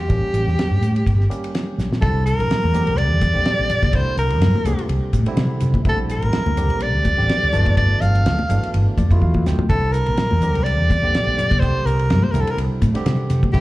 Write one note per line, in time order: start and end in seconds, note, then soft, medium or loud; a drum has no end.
0.00 1.50 G4 medium
0.08 0.21 A1 medium
0.08 0.96 G3 medium
0.08 0.97 A#3 medium
0.08 0.97 C#4 medium
0.08 0.97 G4 medium
0.08 kick medium
0.08 ride medium
0.33 0.44 A1 medium
0.33 hi-hat pedal medium
0.33 ride medium
0.47 0.56 E2 medium
0.47 snare soft
0.59 snare loud
0.59 ride medium
0.70 0.80 G2 medium
0.81 1.01 A2 medium
0.81 hi-hat pedal medium
0.81 ride medium
0.96 ride medium
1.06 1.26 G1 medium
1.06 kick medium
1.06 ride medium
1.20 snare soft
1.29 1.95 G3 medium
1.29 1.95 A#3 medium
1.29 1.96 C#4 medium
1.29 1.96 G4 medium
1.29 hi-hat pedal medium
1.29 ride medium
1.44 ride medium
1.55 snare medium
1.55 ride medium
1.78 1.89 A#1 medium
1.78 snare soft
1.78 hi-hat pedal medium
1.93 snare medium
2.01 2.33 C2 medium
2.01 2.67 D3 medium
2.01 2.67 G3 medium
2.01 2.67 C4 medium
2.01 2.67 E4 medium
2.01 2.24 A4 medium
2.01 kick loud
2.01 ride medium
2.26 2.99 A#4 medium
2.26 hi-hat pedal medium
2.26 ride medium
2.39 2.48 A#1 medium
2.39 ride medium
2.50 muted fretless electric bass stroke soft
2.50 snare loud
2.50 ride medium
2.63 2.89 E2 medium
2.63 high conga medium
2.74 3.28 D3 medium
2.74 3.28 G3 medium
2.74 3.29 C4 medium
2.74 3.29 G4 medium
2.74 hi-hat pedal medium
2.74 ride medium
2.74 high conga medium
2.74 low conga medium
2.87 3.11 C2 medium
2.87 ride medium
2.97 3.97 D5 loud
2.97 ride medium
3.11 3.31 E2 medium
3.21 kick medium
3.21 hi-hat pedal medium
3.21 ride medium
3.21 high conga medium
3.34 3.44 A#1 medium
3.34 3.88 D3 medium
3.34 3.88 G3 medium
3.34 3.88 C4 medium
3.34 3.89 G4 medium
3.45 snare loud
3.45 ride medium
3.59 3.68 A#1 medium
3.70 hi-hat pedal medium
3.70 ride medium
3.70 low conga medium
3.83 4.03 C2 medium
3.83 kick medium
3.83 snare soft
3.83 ride medium
3.83 high conga medium
3.93 4.59 D3 medium
3.93 4.59 G3 medium
3.93 4.59 C4 medium
3.93 4.60 E4 medium
3.93 4.18 C5 medium
3.93 kick loud
3.93 ride medium
4.17 4.41 C2 medium
4.17 4.86 A#4 medium
4.17 hi-hat pedal medium
4.17 ride medium
4.30 ride medium
4.41 4.52 G2 medium
4.41 snare loud
4.41 ride medium
4.55 high conga medium
4.64 4.76 C2 medium
4.64 5.20 D3 medium
4.64 5.20 G3 medium
4.64 5.20 C4 medium
4.64 5.21 G4 medium
4.64 hi-hat pedal medium
4.64 ride medium
4.64 high conga medium
4.79 ride medium
4.89 5.00 C2 medium
4.89 ride medium
5.13 5.24 A2 medium
5.13 kick medium
5.13 hi-hat pedal medium
5.13 ride medium
5.13 high conga medium
5.26 5.80 D3 medium
5.26 5.80 G3 medium
5.26 5.80 C4 medium
5.26 5.81 E4 medium
5.26 ride medium
5.36 5.48 C3 medium
5.36 snare loud
5.36 ride medium
5.60 5.72 C3 medium
5.60 hi-hat pedal medium
5.60 ride medium
5.60 low conga medium
5.74 kick medium
5.74 high conga medium
5.85 6.16 A#1 loud
5.85 6.51 D3 medium
5.85 6.51 G3 medium
5.85 6.51 C4 medium
5.85 6.51 E4 medium
5.85 5.99 A4 medium
5.85 kick loud
5.85 ride medium
6.09 6.84 A#4 medium
6.09 hi-hat pedal medium
6.09 ride medium
6.22 6.31 A1 medium
6.22 ride medium
6.33 snare loud
6.33 ride medium
6.46 6.70 D2 medium
6.46 high conga medium
6.56 7.11 D3 medium
6.56 7.12 G3 medium
6.56 7.12 C4 medium
6.56 7.12 G4 medium
6.56 hi-hat pedal medium
6.56 ride medium
6.56 high conga medium
6.56 low conga medium
6.70 6.94 A#1 medium
6.70 ride medium
6.80 7.76 D5 loud
6.80 ride medium
6.94 7.14 D2 medium
7.05 kick medium
7.05 hi-hat pedal medium
7.05 ride medium
7.05 high conga medium
7.17 7.28 A1 medium
7.17 7.53 D3 medium
7.17 7.53 G3 medium
7.17 7.53 C4 medium
7.17 7.53 G4 medium
7.17 snare soft
7.29 snare loud
7.29 ride medium
7.43 7.52 D2 medium
7.52 7.93 G1 medium
7.52 8.40 B2 medium
7.52 8.40 E3 medium
7.52 8.40 A3 medium
7.52 8.41 D4 loud
7.52 snare soft
7.52 hi-hat pedal medium
7.52 ride medium
7.52 low conga medium
7.65 kick medium
7.65 ride medium
7.65 high conga medium
7.77 8.02 D5 loud
7.77 kick loud
7.77 ride medium
8.01 8.26 G1 medium
8.01 8.73 F5 medium
8.01 hi-hat pedal medium
8.01 ride medium
8.01 low conga medium
8.15 ride medium
8.24 8.35 D2 medium
8.24 snare loud
8.24 ride medium
8.39 high conga medium
8.49 8.60 G1 medium
8.49 9.04 B2 medium
8.49 9.04 E3 medium
8.49 9.04 A3 medium
8.49 9.05 D4 medium
8.49 hi-hat pedal medium
8.49 ride medium
8.49 low conga medium
8.63 ride medium
8.74 8.85 G1 medium
8.74 ride medium
8.98 9.19 F2 medium
8.98 9.20 D5 medium
8.98 kick medium
8.98 hi-hat pedal medium
8.98 ride medium
8.98 high conga medium
9.10 9.64 B2 medium
9.10 9.65 A3 medium
9.10 9.64 E4 medium
9.10 9.65 F4 medium
9.10 kick medium
9.10 ride medium
9.22 9.43 E2 medium
9.22 9.44 F5 medium
9.22 kick medium
9.34 kick medium
9.34 high conga medium
9.46 9.70 D2 medium
9.46 9.69 G5 medium
9.46 snare medium
9.46 hi-hat pedal medium
9.46 low conga medium
9.59 floor tom medium
9.59 high conga medium
9.69 10.00 C2 medium
9.69 10.35 D3 medium
9.69 10.35 G3 medium
9.69 10.36 C4 medium
9.69 10.36 E4 medium
9.69 9.94 A4 medium
9.69 kick loud
9.69 ride medium
9.92 10.65 A#4 medium
9.92 hi-hat pedal medium
9.92 ride medium
10.06 10.17 A#1 medium
10.06 ride medium
10.17 muted fretless electric bass stroke soft
10.17 snare loud
10.17 ride medium
10.31 10.55 E2 medium
10.31 high conga medium
10.41 10.96 D3 medium
10.41 10.96 G3 medium
10.41 10.97 C4 medium
10.41 10.97 G4 medium
10.41 hi-hat pedal medium
10.41 ride medium
10.41 high conga medium
10.41 low conga medium
10.55 10.79 C2 medium
10.55 ride medium
10.64 11.61 D5 loud
10.64 ride medium
10.79 10.98 E2 medium
10.90 kick medium
10.90 hi-hat pedal medium
10.90 ride medium
10.90 high conga medium
11.02 11.11 A#1 medium
11.02 11.56 D3 medium
11.02 11.57 G3 medium
11.02 11.57 C4 medium
11.02 11.57 G4 medium
11.14 snare loud
11.14 ride medium
11.27 11.36 A#1 medium
11.38 snare soft
11.38 hi-hat pedal medium
11.38 ride medium
11.38 low conga medium
11.50 11.71 C2 medium
11.50 kick medium
11.50 ride medium
11.50 high conga medium
11.60 12.27 D3 medium
11.60 12.27 G3 medium
11.60 12.28 C4 medium
11.60 12.28 G4 medium
11.60 11.87 C5 loud
11.60 kick loud
11.60 ride medium
11.85 12.11 C2 medium
11.85 12.25 A#4 medium
11.85 hi-hat pedal medium
11.85 ride medium
11.99 ride medium
12.10 12.20 G2 medium
12.10 snare loud
12.10 ride medium
12.23 12.33 C5 medium
12.23 high conga medium
12.32 12.44 C2 medium
12.32 12.88 D3 medium
12.32 12.89 G3 medium
12.32 12.89 C4 medium
12.32 12.43 A#4 medium
12.32 hi-hat pedal medium
12.32 ride medium
12.32 high conga medium
12.32 low conga medium
12.36 12.89 E4 medium
12.41 12.53 A4 medium
12.47 12.59 A#4 medium
12.47 ride medium
12.57 12.68 C2 medium
12.57 ride medium
12.82 12.93 A2 medium
12.82 kick medium
12.82 snare soft
12.82 hi-hat pedal medium
12.82 ride medium
12.82 high conga medium
12.94 13.48 D3 medium
12.94 13.48 G3 medium
12.94 13.49 C4 medium
12.94 13.49 G4 loud
12.94 snare soft
12.94 ride medium
13.05 13.16 C3 medium
13.05 snare loud
13.05 ride medium
13.30 13.41 C3 medium
13.30 snare soft
13.30 hi-hat pedal medium
13.30 ride medium
13.30 low conga medium
13.43 muted fretless electric bass stroke soft
13.43 kick medium
13.43 high conga medium
13.53 13.61 A#1 loud
13.53 13.61 D3 medium
13.53 13.61 G3 medium
13.53 13.61 C4 medium
13.53 13.61 E4 medium
13.53 13.61 G4 medium
13.53 kick loud
13.53 ride medium